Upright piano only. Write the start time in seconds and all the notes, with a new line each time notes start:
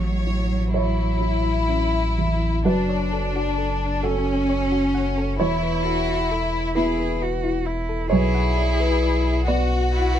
Already playing: A1
0.27 E4
0.74 F#4 C#5
1.21 E4
1.69 C#4
2.18 E2
2.65 F#2 B4
4.03 F#4 A4
5.40 E2 C#5
6.75 B3 E4 B4
8.10 B1 C#5
9.48 B3 F#4 D5